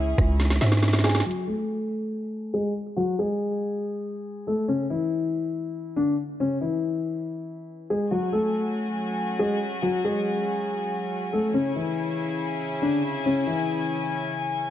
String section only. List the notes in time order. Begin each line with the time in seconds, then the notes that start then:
Already playing: C#3 C#4 E4 G#4
8.11 F#3 C#4 F#4 G#5
11.54 C#3 E4 G#5